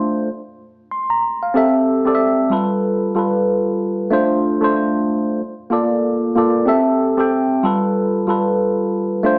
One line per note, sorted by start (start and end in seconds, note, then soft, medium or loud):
0.00 0.29 A3 medium
0.00 0.29 D4 medium
0.00 0.30 F4 medium
0.00 0.29 C5 loud
0.91 1.09 C6 medium
1.10 1.40 A#5 medium
1.43 1.73 F5 medium
1.54 1.98 C4 medium
1.54 1.99 G4 medium
1.54 2.00 A4 medium
1.54 2.00 E5 loud
2.05 2.51 C4 medium
2.05 2.52 G4 medium
2.05 2.51 A4 medium
2.05 2.12 D5 medium
2.15 2.56 E5 medium
2.50 3.08 G3 medium
2.50 3.09 F4 medium
2.50 3.09 A4 medium
2.50 3.10 B4 medium
3.15 4.01 G3 medium
3.15 4.02 F4 medium
3.15 4.02 A4 medium
3.15 4.03 B4 medium
4.10 4.55 A3 medium
4.10 4.55 D4 medium
4.10 4.56 F4 medium
4.10 4.56 C5 loud
4.61 5.39 A3 medium
4.61 5.40 D4 medium
4.61 5.40 F4 medium
4.61 5.41 C5 medium
5.70 6.28 A#3 medium
5.70 6.29 F4 medium
5.70 6.29 A4 medium
5.70 6.30 D5 medium
6.35 6.64 A#3 medium
6.35 6.65 F4 medium
6.35 6.65 A4 medium
6.35 6.66 D5 medium
6.66 7.10 C4 medium
6.66 7.11 G4 medium
6.66 7.12 A4 medium
6.66 7.12 E5 loud
7.17 7.63 C4 medium
7.17 7.64 G4 medium
7.17 7.64 A4 medium
7.17 7.65 G5 medium
7.63 8.21 G3 medium
7.63 8.21 F4 medium
7.63 8.22 A4 medium
7.63 8.22 B4 medium
8.27 9.13 G3 medium
8.27 9.14 F4 medium
8.27 9.15 A4 medium
8.27 9.15 B4 medium
9.23 9.38 A3 medium
9.23 9.38 D4 medium
9.23 9.38 F4 medium
9.23 9.38 C5 loud